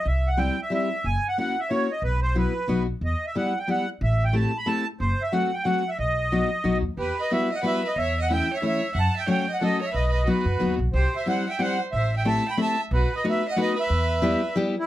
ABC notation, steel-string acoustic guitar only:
X:1
M:3/4
L:1/8
Q:1/4=182
K:Em
V:1 name="Steel-string acoustic guitar"
z2 [G,CEG] z [G,CEG] z | z2 [^A,^CEF] z [A,CEF] z | z2 [F,B,EF] z [F,B,^DF] z | z2 [G,B,EG] z [G,B,EG] z |
z2 [A,CEG] z [A,CEG] z | z2 [F,A,CF] z [F,A,CF] z | z2 [F,B,^DF] z [F,B,DF] z | z2 [G,B,EF] z [G,B,EF] z |
z2 [E,A,^CE] z [E,A,CE] z | z2 [F,A,^CF] z [F,A,CF] z | z2 [F,B,^DF] z [F,B,DF] z | z2 [G,CEG] z [G,CEG] z |
z2 [A,CEG] z [A,CEG] z | z2 [A,B,^DF] z [A,B,DF] z | z2 [G,B,EG] z [G,B,EG] z |]